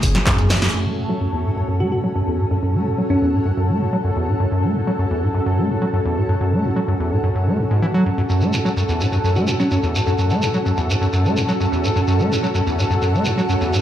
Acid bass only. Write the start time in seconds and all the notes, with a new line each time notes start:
0.03 F#2
0.15 F#3
0.27 F#2
0.38 E2
0.50 A2
0.62 F#2
0.74 F#2
0.86 A3
0.97 F#2
1.09 F#3
1.21 F#2
1.33 E2
1.45 A2
1.56 F#2
1.68 F#2
1.80 A3
1.92 F#2
2.04 F#3
2.15 F#2
2.27 E2
2.39 A2
2.51 F#2
2.63 F#2
2.75 A3
2.86 F#2
2.98 F#3
3.10 F#2
3.22 E2
3.34 A2
3.46 F#2
3.57 F#2
3.69 A3
3.81 F#2
3.93 F#3
4.05 F#2
4.16 E2
4.28 A2
4.40 F#2
4.52 F#2
4.64 A3
4.75 F#2
4.87 F#3
4.99 F#2
5.11 E2
5.23 A2
5.35 F#2
5.46 F#2
5.58 A3
5.70 F#2
5.82 F#3
5.93 F#2
6.05 E2
6.17 A2
6.29 F#2
6.41 F#2
6.53 A3
6.64 F#2
6.76 F#3
6.88 F#2
7.00 E2
7.12 A2
7.24 F#2
7.35 F#2
7.47 A3
7.59 E2
7.71 G#2
7.82 E3
7.94 F#3
8.06 F#2
8.18 F#2
8.30 F#2
8.42 A3
8.53 F#2
8.65 F#3
8.77 F#2
8.89 E2
9.01 A2
9.12 F#2
9.24 F#2
9.36 A3
9.48 F#2
9.60 F#3
9.71 F#2
9.83 E2
9.95 A2
10.07 F#2
10.19 F#2
10.31 A3
10.42 F#2
10.54 F#3
10.66 F#2
10.78 E2
10.90 A2
11.01 F#2
11.13 F#2
11.25 A3
11.37 F#2
11.49 F#3
11.60 F#2
11.72 E2
11.84 A2
11.96 F#2
12.08 F#2
12.20 A3
12.31 F#2
12.43 F#3
12.55 F#2
12.67 E2
12.79 A2
12.90 F#2
13.02 F#2
13.14 A3
13.26 F#2
13.38 F#3
13.49 F#2
13.61 E2
13.73 A2